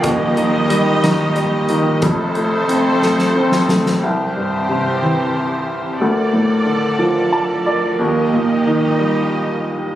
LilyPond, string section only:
\new Staff \with { instrumentName = "String section" } { \time 6/8 \key c \dorian \tempo 4. = 60 << { <ees' g' ees''>2. | <c' a' c''>2. | <c' g' c''>2. | <d, d' a' d''>2. |
<ees' g' ees''>2. | } \\ { <f bes>2. | <f a>2. | <e g>2. | <f bes'>2.~ |
<f bes'>2. | } >> }